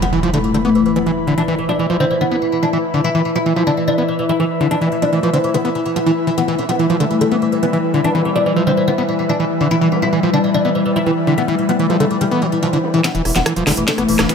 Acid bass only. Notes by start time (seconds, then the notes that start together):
0.02 F3
0.13 E3
0.23 F3
0.33 D3
0.54 D3
0.65 B3
0.96 E3
1.06 E3
1.27 D3
1.38 E3
1.48 E3
1.69 F3
1.79 E3
1.90 F3
2.00 D3
2.21 D3
2.31 B3
2.63 E3
2.73 E3
2.94 D3
3.04 E3
3.15 E3
3.36 F3
3.46 E3
3.56 F3
3.67 D3
3.88 D3
3.98 B3
4.29 E3
4.40 E3
4.61 D3
4.71 E3
4.81 E3
5.02 F3
5.13 E3
5.23 F3
5.33 D3
5.54 D3
5.65 B3
5.96 F3
6.06 E3
6.27 E3
6.38 E3
6.48 E3
6.69 F3
6.79 E3
6.90 F3
7.00 D3
7.21 D3
7.31 B3
7.63 E3
7.73 E3
7.94 D3
8.04 E3
8.15 E3
8.36 F3
8.46 E3
8.56 F3
8.67 D3
8.88 D3
8.98 B3
9.29 E3
9.40 E3
9.61 D3
9.71 E3
9.81 E3
10.02 F3
10.13 E3
10.23 F3
10.33 D3
10.54 D3
10.65 B3
10.96 E3
11.06 E3
11.27 D3
11.38 E3
11.48 E3
11.69 F3
11.79 E3
11.90 F3
12.00 D3
12.21 D3
12.31 B3
12.42 F3
12.63 E3
12.73 D3
12.94 E3
13.04 E3
13.15 E3
13.36 F3
13.46 E3
13.56 F3
13.67 D3
13.88 D3
13.98 B3
14.29 E3